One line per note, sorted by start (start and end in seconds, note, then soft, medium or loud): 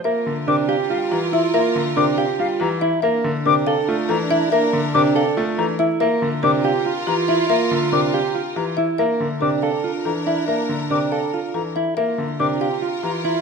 0.00 2.77 F4 medium
0.00 0.11 F5 medium
0.04 0.33 A#3 medium
0.04 2.78 F4 medium
0.04 0.33 A#4 medium
0.04 2.78 A#4 medium
0.04 0.32 E5 medium
0.26 0.54 D3 medium
0.47 0.75 C3 medium
0.47 0.75 D4 loud
0.47 0.75 A#4 medium
0.47 0.56 D6 medium
0.69 0.96 G4 loud
0.69 0.96 F5 medium
0.90 1.18 G3 medium
0.90 1.18 F4 medium
0.90 0.98 F5 medium
1.11 1.39 E3 medium
1.11 1.39 G4 medium
1.11 1.19 A#5 medium
1.33 1.60 E4 loud
1.33 1.53 E5 loud
1.54 1.82 A#3 medium
1.54 1.82 A#4 medium
1.54 1.81 E5 medium
1.76 2.03 D3 medium
1.96 2.24 C3 medium
1.96 2.24 D4 medium
1.96 2.24 A#4 medium
1.96 2.05 D6 medium
2.18 2.45 G4 medium
2.18 2.45 F5 medium
2.39 2.67 G3 medium
2.39 2.67 F4 medium
2.39 2.47 F5 medium
2.60 2.88 E3 medium
2.60 2.88 G4 medium
2.60 2.69 A#5 medium
2.81 3.03 E4 medium
2.81 3.01 E5 loud
3.02 3.31 A#3 medium
3.02 5.75 D4 medium
3.02 5.76 D4 medium
3.02 5.76 A#4 medium
3.02 3.31 A#4 medium
3.02 3.30 E5 medium
3.24 3.52 D3 medium
3.46 3.73 C3 medium
3.46 3.73 D4 loud
3.46 3.73 A#4 medium
3.46 3.54 D6 medium
3.67 3.95 A4 loud
3.67 3.94 F5 loud
3.88 4.16 A3 medium
3.88 4.16 F4 medium
4.09 4.37 E3 medium
4.09 4.37 A4 medium
4.09 4.18 A#5 medium
4.31 4.52 E4 loud
4.31 4.51 E5 loud
4.52 4.80 A#3 medium
4.52 4.80 A#4 medium
4.52 4.79 E5 loud
4.73 5.01 D3 medium
4.94 5.22 C3 medium
4.94 5.22 D4 loud
4.94 5.22 A#4 medium
4.94 5.02 D6 loud
5.15 5.43 A4 loud
5.15 5.43 F5 medium
5.37 5.65 A3 medium
5.37 5.64 F4 medium
5.58 5.86 E3 medium
5.58 5.86 A4 medium
5.58 5.66 A#5 medium
5.79 6.07 E4 loud
5.79 5.99 E5 medium
6.00 6.28 A#3 medium
6.00 8.73 F4 medium
6.00 6.28 A#4 medium
6.00 8.74 A#4 medium
6.00 6.28 E5 medium
6.22 6.50 D3 medium
6.43 6.71 C3 medium
6.43 6.71 D4 medium
6.43 6.71 A#4 medium
6.43 6.51 D6 loud
6.64 6.92 G4 loud
6.64 6.92 F5 medium
6.86 7.14 F4 medium
7.07 7.35 E3 medium
7.07 7.35 G4 medium
7.07 7.15 A#5 medium
7.28 7.50 E4 loud
7.28 7.48 E5 medium
7.50 7.77 A#3 medium
7.50 7.77 A#4 medium
7.50 7.77 E5 loud
7.71 7.99 D3 medium
7.92 8.20 C3 medium
7.92 8.20 D4 medium
7.92 8.20 A#4 medium
7.92 8.00 D6 medium
8.14 8.41 G4 medium
8.14 8.41 F5 medium
8.35 8.63 F4 medium
8.56 8.84 E3 medium
8.56 8.84 G4 medium
8.56 8.64 A#5 medium
8.77 9.05 E4 medium
8.77 8.97 E5 medium
8.98 9.26 A#3 medium
8.98 11.71 D4 medium
8.98 11.71 A#4 medium
8.98 9.26 A#4 medium
8.98 9.26 E5 medium
9.20 9.48 D3 medium
9.41 9.69 C3 medium
9.41 9.69 D4 medium
9.41 9.69 A#4 medium
9.41 9.49 D6 medium
9.62 9.90 A4 medium
9.62 9.90 F5 medium
9.84 10.11 F4 medium
10.05 10.33 E3 medium
10.05 10.33 A4 medium
10.05 10.14 A#5 medium
10.27 10.48 E4 medium
10.27 10.47 E5 medium
10.48 10.75 A#3 medium
10.48 10.75 A#4 medium
10.48 10.75 E5 medium
10.69 10.97 D3 medium
10.90 11.18 C3 medium
10.90 11.18 D4 medium
10.90 11.18 A#4 medium
10.90 10.99 D6 medium
11.12 11.39 A4 medium
11.12 11.39 F5 medium
11.34 11.61 F4 medium
11.54 11.82 E3 medium
11.54 11.82 A4 medium
11.54 11.62 A#5 medium
11.76 11.97 E4 medium
11.76 11.96 E5 medium
11.97 12.24 A#3 medium
11.97 13.41 F4 medium
11.97 13.41 A#4 medium
11.97 12.25 A#4 medium
11.97 12.24 E5 medium
12.18 12.46 D3 medium
12.39 12.67 C3 medium
12.39 12.67 D4 medium
12.39 12.67 A#4 medium
12.39 12.47 D6 medium
12.61 12.88 G4 medium
12.61 12.88 F5 medium
12.82 13.09 F4 medium
13.03 13.31 E3 medium
13.03 13.31 G4 medium
13.03 13.11 A#5 medium
13.25 13.41 E4 medium
13.25 13.41 E5 medium